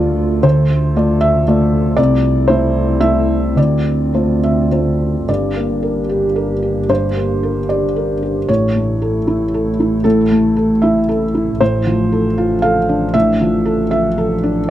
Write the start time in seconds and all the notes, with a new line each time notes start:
Already playing: D2 A3 F4 A4 D5
0.43 D2 C5
0.96 A3 F4 D5
1.21 E5
1.48 A3 F4 D5
1.97 C2 C4 E4 D5
2.48 A3 E4 C5 E5
3.01 A3 E4 E5
3.56 D2 F4 D5
4.14 A3 F4 C5
4.44 E5
4.72 A3 F4 C5
5.28 G1 G2 A#3 D4 G4 D5
5.56 A#3
5.83 A#4
6.09 G4
6.36 A#4
6.63 G4
6.89 G2 C5
7.16 A#3
7.43 A#4
7.69 G4 D5
7.96 A#4
8.23 G4
8.47 A1 A2 A3 E4 A4 C#5
8.75 A3
9.02 A4
9.27 E4
9.54 A4
9.80 E4
10.04 A2 A4
10.31 A3
10.57 A4
10.82 E4 E5
11.09 A4
11.35 E4
11.60 A1 A2 F3 D4 A4 C5
11.86 F3
12.12 A4
12.38 F4
12.62 A4 F5
12.89 D4
13.14 A2 E5
13.41 F3
13.65 A4
13.91 F4 E5
14.18 A4
14.43 D4